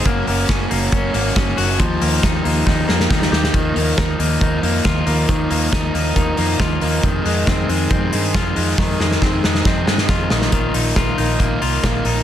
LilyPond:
<<
  \new Staff \with { instrumentName = "Clean electric guitar" } { \time 4/4 \key bes \mixolydian \tempo 4 = 137 bes8 bes8 des'8 bes8 des'8 bes8 des'8 ges'8 | f8 bes8 ees'8 bes8 ees'8 bes8 ees'8 g'8 | ees8 bes8 ees'8 bes8 ees'8 bes8 f'8 bes8 | ees8 bes8 ees'8 bes8 ees'8 bes8 f'8 bes8 |
ees8 aes8 c'8 aes8 c'8 aes8 f'8 aes8 | ees8 aes8 c'8 aes8 c'8 aes8 f'8 ees8 | <ees f'>8 ees'8 f'8 ees'8 bes8 f'8 bes8 ees'8 | }
  \new Staff \with { instrumentName = "Overdriven electric guitar" } { \time 4/4 \key bes \mixolydian <ges bes des' ges'>8 <bes des' ges'>8 <ges bes des' ges'>8 <bes des' ges'>8 <ges bes des' ges'>8 <bes des' ges'>8 <ges bes des' ges'>8 <bes des' ges'>8 | <ees f bes ees' g'>8 <bes ees' g'>8 <ees f bes ees' g'>8 <bes ees' g'>8 <f bes ees' g'>8 <bes ees' g'>8 <ees f bes ees' g'>8 <bes ees' g'>8 | <ees f bes ees'>8 <f bes ees'>8 <ees f bes ees'>8 <f bes ees'>8 <ees f bes ees'>8 <f bes ees'>8 <ees f bes ees'>8 <f bes ees'>8 | <ees f bes ees'>8 <f bes ees'>8 <ees f bes ees'>8 <f bes ees'>8 <ees f bes ees'>8 <f bes ees'>8 <ees f bes ees'>8 <f bes ees'>8 |
<f, c ees aes ees'>8 <ees aes ees'>8 <c ees aes ees'>8 <ees aes ees'>8 <f, c ees aes ees'>8 <ees aes ees'>8 <c ees aes ees'>8 <ees aes ees'>8 | <f, c ees aes ees'>8 <ees aes ees'>8 <c ees aes ees'>8 <ees aes ees'>8 <f, c ees aes ees'>8 <ees aes ees'>8 <c ees aes ees'>8 <bes ees' f'>8 | <bes, ees bes ees' f'>8 <bes ees' f'>8 <bes, ees bes ees' f'>8 <bes ees' f'>8 <ees bes ees' f'>8 <bes ees' f'>8 <bes, ees bes ees' f'>8 <bes ees' f'>8 | }
  \new Staff \with { instrumentName = "Fingered electric bass" } { \clef bass \time 4/4 \key bes \mixolydian ges,,8 ges,,8 ges,,8 ges,,8 ges,,8 aes,,8 ges,,8 ges,,8 | ees,8 ees,8 ees,8 ees,8 ees,8 f,8 ees,8 ees,8 | ees,8 ees,8 ees,8 ees,8 ees,8 f,8 ees,8 ees,8 | r8 ees,8 ees,8 ees,8 ees,8 f,8 ees,8 ees,8 |
f,8 f,8 f,8 f,8 f,8 g,8 f,8 f,8 | f,8 f,8 f,8 f,8 f,8 g,8 f,8 bes,,8 | bes,,8 bes,,8 bes,,8 bes,,8 bes,,8 c,8 bes,,8 bes,,8 | }
  \new DrumStaff \with { instrumentName = "Drums" } \drummode { \time 4/4 <hhp bd cymr>8 hho8 <hhp bd cymr sn>8 hho8 <hhp bd cymr>8 hho8 <hhp bd cymr sn>8 hho8 | <hhp bd cymr>8 hho8 <hhp bd cymr sn>8 hho8 <bd sn>8 sn16 sn16 <bd sn>16 sn16 sn16 sn16 | <hh bd>8 hho8 <hh bd sn>8 hho8 <hh bd>8 hho8 <hh bd sn>8 hho8 | <hh bd>8 hho8 <hh bd sn>8 hho8 <hh bd>8 hho8 <hh bd sn>8 hho8 |
<hh bd>8 hho8 <hh bd sn>8 hho8 <hh bd>8 hho8 <hh bd sn>8 hho8 | <bd sn>8 sn16 sn16 <bd sn>8 sn16 sn16 <bd sn>8 sn16 sn16 <bd sn>8 sn16 sn16 | <hh bd>8 hho8 <hh bd sn>8 hho8 <hh bd>8 hho8 <hh bd sn>8 hho8 | }
>>